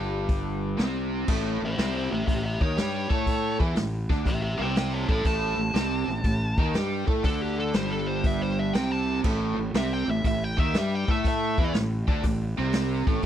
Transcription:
Already playing: G1 G2 G3 A5
0.29 kick, open hi-hat
0.77 C2 C3 C4, snare, open hi-hat
1.28 A1 A2 A3, kick, crash
1.62 A1 A2 E4
1.66 C5
1.78 C2 C3 C4 E4, snare, open hi-hat
1.82 C5
1.98 E4 C5
2.11 A1 A2 G4 E5
2.27 A1 A2 G4 E5, kick, open hi-hat
2.44 G4 E5
2.61 D#2 D#3 D#4 C#5, kick
2.77 G2 G3 G4, snare, open hi-hat
3.10 A2 A3 A4, kick
3.26 kick, open hi-hat
3.59 E2 E3 E4, kick
3.75 A1 A2, snare, open hi-hat
4.10 D2 D3 D4, kick, snare
4.25 A1 A2 G4 E5, kick, open hi-hat
4.42 G4 E5
4.58 C2 C3 C4 E5 G5
4.76 E5 G5, snare, open hi-hat
4.93 C#5 A5
5.08 A1 A2 A3 C#5 A5, kick
5.25 A1 A2 A3 A5, kick, open hi-hat
5.58 A1 A2
5.74 C2 C3 C4, snare, open hi-hat
6.08 A1 A2, snare
6.24 A1 A2, kick, open hi-hat
6.58 D#2 D#3 D#4, kick
6.74 G2 G3 G4, snare, open hi-hat
7.07 A2 A3 A4, kick
7.23 D2 D3 D4 A4, kick, open hi-hat
7.42 G4
7.60 A4
7.73 G1 G2 G3 C5, snare, open hi-hat
7.91 A4
8.07 C5
8.24 E5, kick, open hi-hat
8.42 C5
8.59 E5
8.73 C2 C3 C4 G5, snare, open hi-hat
8.91 A5
9.24 A1 A2 A3, kick, crash
9.58 A1 A2
9.74 C2 C3 C4 E5, snare, open hi-hat
9.93 G5
10.08 A1 A2 E5
10.24 A1 A2 E5, kick, open hi-hat
10.44 G5
10.58 D#2 D#3 D#4 E5, kick
10.74 G2 G3 G4, snare, open hi-hat
10.78 E5
10.95 G5
11.08 A2 A3 A4 E5, kick
11.24 E5, kick, open hi-hat
11.58 E2 E3 E4, kick
11.73 A1 A2, snare, open hi-hat
12.08 D2 D3 D4, kick
12.23 A1 A2, kick, open hi-hat
12.58 C2 C3 C4
12.73 snare, open hi-hat
13.07 A1 A2 A3, kick
13.22 open hi-hat

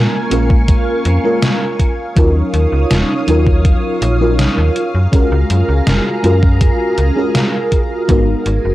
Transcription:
Already playing: G#3 A#3 C#4 F4 A#4 F5 G#5 C#6
0.30 A#1 G#3 A#3 C#4 F4 A#4, closed hi-hat
0.50 kick
0.68 kick, closed hi-hat
1.05 F2, closed hi-hat
1.24 G#3 A#3 C#4 F4 A#4
1.42 snare, closed hi-hat
1.79 C#5 F5 D#6, kick, closed hi-hat
2.15 D#2 F#3 C#4 D#4 F4 A#4, kick, closed hi-hat
2.54 D#2, closed hi-hat
2.72 C#2
2.91 D#1, snare, closed hi-hat
3.27 D#2 F#3 C#4 D#4 F4 A#4, closed hi-hat
3.47 kick
3.65 kick, closed hi-hat
4.02 A#1, closed hi-hat
4.20 F#3 C#4 D#4 F4 A#4
4.39 snare, closed hi-hat
4.58 D#2
4.76 G#4 A#5, closed hi-hat
4.95 F#2
5.12 C#2 G#3 C#4 F4 F#4 A#4, kick, closed hi-hat
5.32 C#2
5.50 F#2, closed hi-hat
5.69 C#2
5.87 F#1, snare, closed hi-hat
6.23 F#2 G#3 C#4 F4 F#4 A#4, closed hi-hat
6.43 kick
6.61 kick, closed hi-hat
6.98 C#2, closed hi-hat
7.15 G#3 C#4 F4 F#4 A#4
7.35 snare, closed hi-hat
7.72 kick, closed hi-hat
8.08 G#1 G#3 B3 D#4 F#4 A#4 G#5, kick, closed hi-hat
8.46 G#1, closed hi-hat
8.65 F#1

